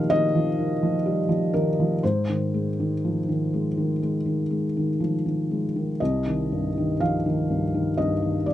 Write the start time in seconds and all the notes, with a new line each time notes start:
Already playing: A#2 D#3 F3 G3 D#5 F5
0.10 D#3 D#5
0.35 F3
0.59 D#3
0.83 F3
1.06 G3
1.29 F3
1.54 D#3 A#4
1.80 F3
2.03 G#2 C5
2.30 D#3
2.54 G#3
2.80 D#3
3.05 F3
3.29 D#3
3.53 G#3
3.78 D#3
4.02 G#3
4.26 D#3
4.51 G#3
4.77 D#3
5.00 F3
5.26 D#3
5.51 G#3
5.76 D#3
6.00 C2 D#5
6.27 D#3
6.52 G2
6.77 D#3
7.00 F3 F5
7.26 D#3
7.50 G2
7.74 D#3
7.97 G2 D#5
8.22 D#3
8.46 G2 D5